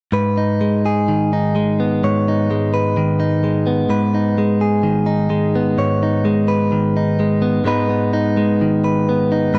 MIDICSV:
0, 0, Header, 1, 2, 480
1, 0, Start_track
1, 0, Key_signature, 5, "minor"
1, 0, Tempo, 941915
1, 63, Time_signature, 4, 2, 24, 8
1, 4886, End_track
2, 0, Start_track
2, 0, Title_t, "Clean electric guitar"
2, 0, Program_c, 0, 27
2, 63, Note_on_c, 0, 44, 51
2, 68, Note_on_c, 0, 71, 43
2, 191, Note_on_c, 0, 63, 36
2, 310, Note_on_c, 0, 56, 41
2, 434, Note_off_c, 0, 71, 0
2, 436, Note_on_c, 0, 68, 39
2, 552, Note_on_c, 0, 51, 40
2, 675, Note_off_c, 0, 63, 0
2, 678, Note_on_c, 0, 63, 39
2, 791, Note_off_c, 0, 56, 0
2, 793, Note_on_c, 0, 56, 38
2, 916, Note_on_c, 0, 59, 38
2, 1035, Note_off_c, 0, 44, 0
2, 1037, Note_on_c, 0, 44, 49
2, 1038, Note_off_c, 0, 68, 0
2, 1040, Note_on_c, 0, 73, 38
2, 1161, Note_off_c, 0, 63, 0
2, 1163, Note_on_c, 0, 63, 40
2, 1275, Note_off_c, 0, 56, 0
2, 1277, Note_on_c, 0, 56, 38
2, 1391, Note_off_c, 0, 73, 0
2, 1395, Note_on_c, 0, 71, 38
2, 1506, Note_off_c, 0, 51, 0
2, 1514, Note_on_c, 0, 51, 46
2, 1627, Note_off_c, 0, 63, 0
2, 1629, Note_on_c, 0, 63, 42
2, 1749, Note_off_c, 0, 56, 0
2, 1751, Note_on_c, 0, 56, 40
2, 1866, Note_off_c, 0, 59, 0
2, 1868, Note_on_c, 0, 59, 40
2, 1957, Note_off_c, 0, 51, 0
2, 1982, Note_off_c, 0, 44, 0
2, 1984, Note_on_c, 0, 44, 47
2, 1986, Note_off_c, 0, 71, 0
2, 1988, Note_on_c, 0, 71, 42
2, 2102, Note_off_c, 0, 63, 0
2, 2112, Note_on_c, 0, 63, 35
2, 2230, Note_off_c, 0, 56, 0
2, 2232, Note_on_c, 0, 56, 43
2, 2342, Note_off_c, 0, 71, 0
2, 2350, Note_on_c, 0, 68, 36
2, 2462, Note_on_c, 0, 51, 42
2, 2574, Note_off_c, 0, 63, 0
2, 2580, Note_on_c, 0, 63, 43
2, 2695, Note_off_c, 0, 56, 0
2, 2701, Note_on_c, 0, 56, 38
2, 2820, Note_off_c, 0, 59, 0
2, 2830, Note_on_c, 0, 59, 39
2, 2938, Note_off_c, 0, 44, 0
2, 2942, Note_off_c, 0, 68, 0
2, 2944, Note_on_c, 0, 44, 49
2, 2948, Note_on_c, 0, 73, 37
2, 3057, Note_off_c, 0, 63, 0
2, 3072, Note_on_c, 0, 63, 39
2, 3178, Note_off_c, 0, 56, 0
2, 3185, Note_on_c, 0, 56, 46
2, 3301, Note_off_c, 0, 73, 0
2, 3303, Note_on_c, 0, 71, 39
2, 3418, Note_off_c, 0, 51, 0
2, 3424, Note_on_c, 0, 51, 42
2, 3544, Note_off_c, 0, 63, 0
2, 3550, Note_on_c, 0, 63, 37
2, 3662, Note_off_c, 0, 56, 0
2, 3667, Note_on_c, 0, 56, 34
2, 3774, Note_off_c, 0, 59, 0
2, 3780, Note_on_c, 0, 59, 41
2, 3873, Note_off_c, 0, 51, 0
2, 3873, Note_off_c, 0, 71, 0
2, 3874, Note_off_c, 0, 56, 0
2, 3889, Note_off_c, 0, 44, 0
2, 3895, Note_on_c, 0, 44, 45
2, 3899, Note_off_c, 0, 59, 0
2, 3901, Note_on_c, 0, 56, 41
2, 3902, Note_off_c, 0, 63, 0
2, 3905, Note_on_c, 0, 59, 41
2, 3908, Note_on_c, 0, 63, 39
2, 3911, Note_on_c, 0, 71, 50
2, 4021, Note_off_c, 0, 59, 0
2, 4023, Note_on_c, 0, 59, 32
2, 4143, Note_off_c, 0, 63, 0
2, 4145, Note_on_c, 0, 63, 42
2, 4264, Note_off_c, 0, 56, 0
2, 4266, Note_on_c, 0, 56, 38
2, 4389, Note_on_c, 0, 51, 47
2, 4505, Note_off_c, 0, 71, 0
2, 4507, Note_on_c, 0, 71, 37
2, 4629, Note_off_c, 0, 59, 0
2, 4631, Note_on_c, 0, 59, 39
2, 4746, Note_off_c, 0, 63, 0
2, 4748, Note_on_c, 0, 63, 41
2, 4858, Note_off_c, 0, 44, 0
2, 4860, Note_on_c, 0, 44, 52
2, 4864, Note_off_c, 0, 71, 0
2, 4866, Note_on_c, 0, 71, 44
2, 4886, Note_off_c, 0, 44, 0
2, 4886, Note_off_c, 0, 51, 0
2, 4886, Note_off_c, 0, 56, 0
2, 4886, Note_off_c, 0, 59, 0
2, 4886, Note_off_c, 0, 63, 0
2, 4886, Note_off_c, 0, 71, 0
2, 4886, End_track
0, 0, End_of_file